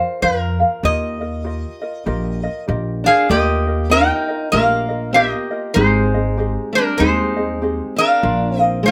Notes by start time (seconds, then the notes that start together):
Already playing: C5 F5
0.00 F4 A#4
0.22 F2 F4 A#4 D5 F5
0.60 F4 A#4 F5
0.83 D#2 F4 G4 A#4 D#5
1.21 F4 A#4 D#5
1.44 F4 G4 A#4 D#5
1.82 F4 A#4 D#5
2.06 A#1 F4 G4 A#4 D#5
2.43 F4 A#4 D#5
2.68 A#1 F4 G4 A#4 D#5
3.04 D4 G#4 A#4 F5
3.08 F4
3.29 D#2 A#3 F4 G4 A#4 D#5
3.67 F4 A#4 D#5
3.90 D#4 F4 G4 A#4 D#5 G5
4.28 F4 A#4 D#5
4.52 A#1 A#3 F4 G4 A#4 D#5 F5
4.89 F4 A#4 D#5
5.13 A#3 F4 G4 A#4 D#5
5.51 F4 A#4 D#5
5.74 G#1 G#3 C4 D#4 G4 G#4 C5 D#5
6.14 C4 G#4 D#5
6.37 C4 G4 G#4 D#5
6.73 G3 A#4
6.78 C4 D4
6.97 D#2 G#3 C4 D#4 G4 G#4 C5 D#5
7.36 C4 G#4 D#5
7.62 C4 G4 G#4 D#5
7.96 C4 D4 G#4 A#4 F5
8.23 A#1 F4 A#4 D5 F5
8.55 C4 F5
8.60 F4 A#4 D#5
8.83 A#3 F4 A#4 D5 F5
8.88 F4